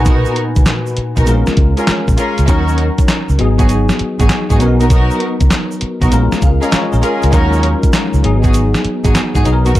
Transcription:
Already playing: fingered electric bass B1, tine electric piano A#2 D#4 F#4 B4 G#5
0.05 string section B3 D#4 F#4 A#4, kick, closed hi-hat, shaker
0.25 shaker
0.36 closed hi-hat
0.56 fingered electric bass C#2, kick, closed hi-hat, shaker
0.66 snare, clap, closed hi-hat, shaker
0.87 shaker
0.97 muted fingered electric bass stroke, closed hi-hat
1.16 fingered electric bass B1, string section B3 D#4 F#4 A#4, kick, closed hi-hat, shaker
1.26 fingered electric bass A#1, tine electric piano G#3 C4 F4 A#4, closed hi-hat, shaker
1.34 tine electric piano C#4
1.47 snare, shaker
1.57 fingered electric bass C#2, kick, closed hi-hat
1.77 string section C#4 F4 G#4 A#4, closed hi-hat, shaker
1.87 muted fingered electric bass stroke, snare, clap, closed hi-hat, shaker
2.08 fingered electric bass A#1, kick, shaker
2.17 string section C#4 F4 G#4 A#4, closed hi-hat, shaker
2.38 fingered electric bass C#2, closed hi-hat, shaker
2.47 fingered electric bass D#2, tine electric piano F#3 C#4 D#4 A#4, string section C#4 D#4 F#4 A#4, kick, closed hi-hat, shaker
2.68 shaker
2.78 closed hi-hat
2.98 kick, closed hi-hat, shaker
3.08 snare, clap, closed hi-hat, shaker
3.29 fingered electric bass C#2, shaker
3.38 fingered electric bass G#1, tine electric piano F#3 B3 D#4 G#4, closed hi-hat
3.58 string section B3 D#4 F#4 G#4, kick, closed hi-hat, shaker
3.69 closed hi-hat, shaker
3.89 snare, shaker
3.99 muted fingered electric bass stroke, closed hi-hat
4.19 fingered electric bass G#1, string section B3 D#4 F#4 G#4, kick, closed hi-hat, shaker
4.29 snare, clap, closed hi-hat, shaker
4.50 fingered electric bass G#2, string section B3 D#4 F#4 G#4, kick, shaker
4.59 fingered electric bass B1, tine electric piano F#3 B3 C#4 A#4, closed hi-hat, shaker
4.67 tine electric piano D#4
4.80 string section B3 D#4 F#4 A#4, closed hi-hat, shaker
4.90 string section B3 D#4 F#4 A#4, kick, closed hi-hat, shaker
5.11 shaker
5.20 closed hi-hat
5.40 fingered electric bass C#2, kick, closed hi-hat, shaker
5.51 snare, clap, closed hi-hat, shaker
5.71 shaker
5.81 muted fingered electric bass stroke, closed hi-hat
6.01 fingered electric bass B1, string section B3 D#4 F#4 A#4, kick, closed hi-hat, shaker
6.11 fingered electric bass A#1, tine electric piano G#3 C#4 F4 A#4, closed hi-hat, shaker
6.32 muted fingered electric bass stroke, snare, shaker
6.42 fingered electric bass C#2, tine electric piano G#4 F5, kick, closed hi-hat, shaker
6.62 string section C#4 F4 G#4 A#4, tine electric piano D#5, closed hi-hat, shaker
6.72 tine electric piano F4 C#5, muted fingered electric bass stroke, snare, clap, closed hi-hat, shaker
6.93 fingered electric bass A#1, tine electric piano C#4 A#4, shaker
7.02 string section C#4 F4 G#4 A#4, tine electric piano G#4, closed hi-hat, shaker
7.22 fingered electric bass C#2, tine electric piano G#3 F4, closed hi-hat, shaker
7.32 fingered electric bass D#2, tine electric piano F#3 C#4 D#4 A#4, string section C#4 D#4 F#4 A#4, kick, closed hi-hat, shaker
7.53 shaker
7.63 closed hi-hat
7.83 kick, closed hi-hat, shaker
7.93 snare, clap, closed hi-hat, shaker
8.14 fingered electric bass C#2, shaker
8.23 fingered electric bass G#1, tine electric piano F#3 B3 D#4 G#4, closed hi-hat
8.43 string section B3 D#4 F#4 G#4, kick, closed hi-hat, shaker
8.54 closed hi-hat, shaker
8.74 snare, shaker
8.85 muted fingered electric bass stroke, closed hi-hat
9.04 fingered electric bass G#1, string section B3 D#4 F#4 G#4, kick, closed hi-hat, shaker
9.15 snare, clap, closed hi-hat, shaker
9.35 fingered electric bass G#2, string section B3 D#4 F#4 G#4, kick, shaker
9.44 fingered electric bass B1, tine electric piano F#3 B3 D#4 G#4, closed hi-hat, shaker
9.53 tine electric piano A#4
9.65 string section B3 D#4 F#4 A#4, closed hi-hat, shaker
9.75 string section B3 D#4 F#4 A#4, kick, closed hi-hat, shaker

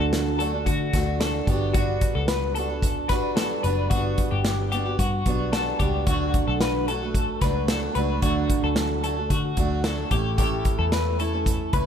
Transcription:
Already playing: steel-string acoustic guitar D3 F#3 A3 D4 F#4
0.00 picked electric bass D2, clean electric guitar A4
0.13 snare, closed hi-hat
0.39 steel-string acoustic guitar F#3 A3 D4 F#4, clean electric guitar A4, closed hi-hat
0.53 steel-string acoustic guitar A3 D4 F#4
0.66 picked electric bass D3, clean electric guitar F#4, kick, closed hi-hat
0.93 picked electric bass D2, steel-string acoustic guitar F#3 A3 D4 F#4, kick, snare, closed hi-hat
1.20 steel-string acoustic guitar F#3 A3 D4 F#4, clean electric guitar A4, snare, closed hi-hat
1.47 picked electric bass G1, steel-string acoustic guitar G3 B3 D4 F#4, clean electric guitar G4, kick, closed hi-hat
1.73 steel-string acoustic guitar G3 B3 D4 F#4, clean electric guitar F#4, kick, closed hi-hat
2.01 kick, closed hi-hat
2.15 picked electric bass C#2, clean electric guitar A4
2.28 clean electric guitar B4, snare, closed hi-hat
2.55 steel-string acoustic guitar G3 B3 D4 F#4, clean electric guitar A4, closed hi-hat
2.69 steel-string acoustic guitar B3 D4 F#4
2.82 kick, closed hi-hat
3.09 picked electric bass B1, steel-string acoustic guitar G3 B3 D4 F#4, clean electric guitar B4, kick, snare, closed hi-hat
3.36 steel-string acoustic guitar G3 B3 D4 F#4, clean electric guitar A4, snare, closed hi-hat
3.63 picked electric bass F#1, steel-string acoustic guitar G3 B3 D4 F#4, clean electric guitar B4, closed hi-hat
3.90 picked electric bass G1, steel-string acoustic guitar G3 B3 D4 F#4, clean electric guitar F#4, kick, closed hi-hat
4.18 kick, closed hi-hat
4.31 picked electric bass G1, clean electric guitar G4
4.45 snare, closed hi-hat
4.71 steel-string acoustic guitar G3 B3 D4 F#4, clean electric guitar G4, closed hi-hat
4.86 steel-string acoustic guitar B3 D4 F#4
4.99 picked electric bass G2, clean electric guitar F#4, kick, closed hi-hat
5.25 picked electric bass B1, steel-string acoustic guitar G3 B3 D4 F#4, kick, closed hi-hat
5.53 steel-string acoustic guitar G3 B3 D4 F#4, clean electric guitar A4, snare, closed hi-hat
5.79 picked electric bass C#2, steel-string acoustic guitar G3 B3 D4 F#4, clean electric guitar G4, kick, closed hi-hat
6.07 picked electric bass D2, steel-string acoustic guitar D3 F#3 A3 D4 F#4, clean electric guitar F#4, kick, closed hi-hat
6.34 kick, closed hi-hat
6.48 picked electric bass B1, clean electric guitar A4
6.61 clean electric guitar B4, snare, closed hi-hat
6.88 steel-string acoustic guitar F#3 A3 D4 F#4, clean electric guitar A4, closed hi-hat
7.02 steel-string acoustic guitar A3 D4 F#4
7.14 kick, closed hi-hat
7.41 picked electric bass C#2, steel-string acoustic guitar F#3 A3 D4 F#4, clean electric guitar B4, kick, snare, closed hi-hat
7.68 steel-string acoustic guitar F#3 A3 D4 F#4, clean electric guitar A4, snare, closed hi-hat
7.95 picked electric bass C#2, steel-string acoustic guitar F#3 A3 D4 F#4, clean electric guitar B4, closed hi-hat
8.22 picked electric bass D2, steel-string acoustic guitar D3 F#3 A3 D4 F#4, clean electric guitar F#4, kick, closed hi-hat
8.50 kick, closed hi-hat
8.63 picked electric bass D2, clean electric guitar A4
8.76 snare, closed hi-hat
9.04 steel-string acoustic guitar F#3 A3 D4 F#4, clean electric guitar A4, closed hi-hat
9.17 steel-string acoustic guitar A3 D4 F#4
9.30 picked electric bass D3, clean electric guitar F#4, kick, closed hi-hat
9.57 picked electric bass D2, steel-string acoustic guitar F#3 A3 D4 F#4, kick, closed hi-hat
9.84 steel-string acoustic guitar F#3 A3 D4 F#4, clean electric guitar A4, snare, closed hi-hat
10.11 picked electric bass A1, steel-string acoustic guitar A3 C#4 E4 A4, clean electric guitar G4, kick, closed hi-hat
10.38 steel-string acoustic guitar A2 E3 A3 C#4 E4 A4, clean electric guitar G4, kick, closed hi-hat
10.65 kick, closed hi-hat
10.79 picked electric bass E2, clean electric guitar A4
10.92 clean electric guitar B4, snare, closed hi-hat
11.19 steel-string acoustic guitar A3 C#4 E4 A4, clean electric guitar A4, closed hi-hat
11.33 steel-string acoustic guitar A3 C#4 E4 A4
11.46 kick, closed hi-hat
11.73 picked electric bass C#2, steel-string acoustic guitar A3 C#4 E4 A4, clean electric guitar B4, kick, closed hi-hat

